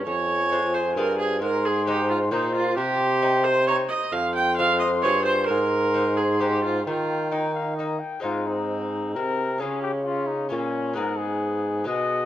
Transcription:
X:1
M:3/4
L:1/8
Q:1/4=132
K:Ab
V:1 name="Cornet"
a6 | c'4 c'2 | c'4- c' z | c'6 |
c'6 | g2 g f e g | F E3 B2 | A G F E D2 |
B A3 e2 |]
V:2 name="Viola"
d3 c B A | B A G F E F | G3 c d e | f g f e d c |
B3 A G F | F2 E2 z2 | C6 | D2 D2 D2 |
_C4 C2 |]
V:3 name="Lute"
z2 [A,CF]2 [CFA]2 | z2 [A,CE]2 [A,CE]2 | z2 [CE]2 [CE]2 | z2 [A,CF]2 [CFA]2 |
z2 [A,CE]2 [A,CE]2 | z2 [B,E]2 [B,E]2 | [A,CE]6 | [A,DF]4 [A,DF]2 |
[A,_CA]4 [A,CA]2 |]
V:4 name="Lute" clef=bass
F,,4 G,,2 | A,,4 B,,2 | C,4- C, z | F,,4 G,,2 |
A,,6 | E,4- E, z | A,,4 C,2 | D,4 B,,2 |
A,,4 _C,2 |]
V:5 name="Bassoon" clef=bass
F,,4 G,,2 | A,,4 B,,2 | C,4- C, z | F,,4 G,,2 |
A,,6 | E,4- E, z | A,,4 C,2 | D,4 B,,2 |
A,,4 _C,2 |]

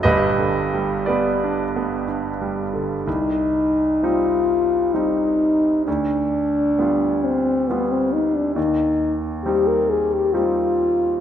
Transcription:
X:1
M:3/4
L:1/16
Q:1/4=65
K:Cm
V:1 name="French horn"
z12 | E4 F4 E4 | D6 C2 =B, C E D | E3 z G B A G F4 |]
V:2 name="Grand piano"
[G=Be]4 [GBd]4 z4 | z12 | z12 | z12 |]
V:3 name="Grand piano"
(3[G,,,G,,]2 D,2 G,2 (3=B,2 D2 B,2 (3D2 G,2 D,2 | C,,4 [G,CE]4 [G,CE]4 | D,,4 [G,=B,F]4 [G,B,F]4 | E,,4 [G,CE]4 [G,CE]4 |]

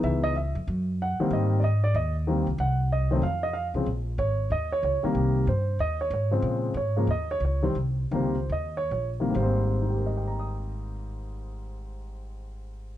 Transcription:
X:1
M:4/4
L:1/8
Q:"Swing" 1/4=188
K:Ab
V:1 name="Grand piano"
_f e f z3 _g2 | e2 [=de] d e z3 | _g2 e2 f e f z | z2 d2 e d d z |
z2 c2 e d d z | z2 d2 e d z2 | z2 c2 e d d z | z2 [EGBegbe']6- |
[EGBegbe']8 |]
V:2 name="Grand piano" clef=bass
[=E,^G,=B,^D]2 z4 z [_E,=G,_B,C]- | [E,G,B,C]2 z4 [E,G,B,C] z | z3 [E,_G,=A,C] z3 [D,F,_A,C] | z6 z [C,E,G,B,]- |
[C,E,G,B,]2 z4 z [D,F,A,C]- | [D,F,A,C]2 z [D,F,A,B,] z3 [C,E,G,C] | z2 [C,E,G,B,] z4 [C,E,G,B,] | [A,,G,B,Cc]8- |
[A,,G,B,Cc]8 |]
V:3 name="Upright bass" clef=bass
D,,3 F,, _G,,3 z | A,,4 E,,3 D,, | C,,4 F,,3 C,, | B,,,2 A,,,2 E,,2 D,, z |
C,,2 G,,2 E,,2 A,,2 | B,,2 A,,2 E,,2 D,,2 | C,,2 D,,2 E,,2 B,,,2 | A,,,8- |
A,,,8 |]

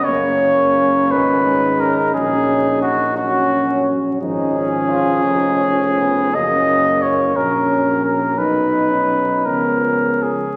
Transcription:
X:1
M:6/8
L:1/16
Q:3/8=57
K:F#
V:1 name="Cornet"
c6 B4 A2 | G4 F2 F4 z2 | G12 | d4 c2 A4 A2 |
B6 A4 G2 |]
V:2 name="Euphonium"
C12 | C4 z2 C6 | C12 | C6 C6 |
D3 C3 B,4 z2 |]
V:3 name="Flugelhorn"
A,6 D6- | D6 C4 z2 | D2 C2 E2 D2 C2 B,2 | A,6 C6 |
D6 C6 |]
V:4 name="Trombone" clef=bass
A,8 G,4 | F,4 z2 F,6 | E,12 | F,6 F,6 |
F,6 E,4 z2 |]
V:5 name="Tuba" clef=bass
F,,,6 G,,,6 | A,,,8- A,,,2 z2 | G,,,6 E,,,6 | F,,,6 A,,,6 |
B,,,6 C,,6 |]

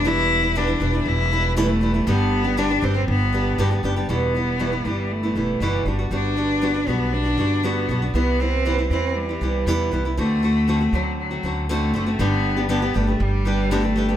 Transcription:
X:1
M:4/4
L:1/16
Q:1/4=118
K:G
V:1 name="Cello"
E4 D4 E4 A,4 | B,4 D2 C2 B,6 z2 | B,6 G,2 A,4 G,3 z | D6 B,2 D4 B,3 z |
B,2 C4 C2 G,6 z2 | A,6 F,2 F,4 A,4 | B,4 B,2 A,2 G,4 A,4 |]
V:2 name="Nylon-string guitar"
[E,,B,,E,G,B,E]3 [E,G,B,E] [E,,B,,E,G,B,E] [E,G,B,E] [E,G,B,E] [E,G,B,E]3 [E,G,B,E]2 [E,,B,,E,G,B,E] [E,G,B,E] [E,G,B,E] [E,G,B,E] | [G,,D,G,B,DG]3 [G,B,DG] [G,,D,G,B,DG] [G,B,DG] [G,B,DG] [G,B,DG]3 [G,B,DG]2 [G,,D,G,B,DG] [G,B,DG] [G,B,DG] [G,B,DG] | [E,,B,,E,G,B,E]2 [E,G,B,E]2 [E,,B,,E,G,B,E] [E,G,B,E] [E,G,B,E]3 [E,G,B,E] [E,G,B,E]2 [E,,B,,E,G,B,E]2 [G,B,DF] [B,DF] | [G,B,DF]2 [G,B,DF]2 [G,B,DF] [B,DF] [G,B,DF]3 [B,DF] [G,B,DF]2 [G,B,DF]2 [G,B,DF] [B,DF] |
[C,E,G,B,E]2 [E,G,B,E]2 [C,E,G,B,E] [G,B,E] [E,G,B,E]3 [G,B,E] [E,G,B,E]2 [C,E,G,B,E]2 [E,G,B,E] [G,B,E] | [D,A,CF]2 [D,A,CF]2 [D,A,CF] [A,CF] [D,A,CF]3 [A,CF] [D,A,CF]2 [D,A,CF]2 [D,A,CF] [A,CF] | [G,,D,G,B,DG]3 [G,B,DG] [G,,D,G,B,DG] [G,B,DG] [G,B,DG] [G,B,DG]3 [G,B,DG]2 [G,,D,G,B,DG] [G,B,DG] [G,B,DG] [G,B,DG] |]
V:3 name="Upright bass" clef=bass
E,,,6 E,,,2 E,,,8 | G,,,6 G,,,2 G,,,4 G,,,2 F,,,2 | E,,,6 G,,,4 E,,,2 F,,,2 G,,,2 | G,,,6 B,,,4 G,,,4 B,,,2 |
C,,6 E,,4 C,,2 E,,2 C,,2 | D,,6 D,,4 D,,4 F,,,2 | G,,,6 G,,,2 G,,,8 |]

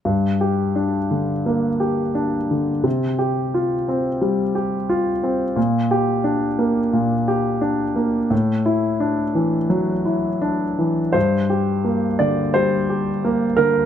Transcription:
X:1
M:4/4
L:1/8
Q:1/4=86
K:Gdor
V:1 name="Grand piano"
z8 | z8 | z8 | z8 |
c3 d c3 B |]
V:2 name="Grand piano"
G,, G D D, B, G D D, | C, G F C G, G F C | B,, G D B, B,, G D B, | A,, E D E, ^F, E D E, |
G,, G B, D, G, G B, D, |]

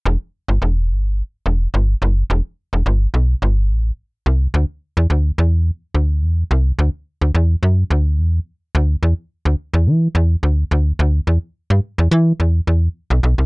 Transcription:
X:1
M:4/4
L:1/16
Q:1/4=107
K:Em
V:1 name="FM bass" clef=bass
E,,, z2 G,,, E,,,2 G,,,3 z E,,,2 G,,,2 F,,,2 | E,,, z2 E,,, G,,,2 B,,,2 G,,,2 A,,,2 z2 C,,2 | D,, z2 E,, D,,2 E,,3 z D,,2 E,,2 C,,2 | D,, z2 D,, E,,2 F,,2 D,,2 E,,2 z2 D,,2 |
E,, z2 D,, z E,, E,2 E,,2 D,,2 D,,2 D,,2 | E,, z2 G,, z E,, E,2 E,,2 E,,2 z B,,, B,,, C,, |]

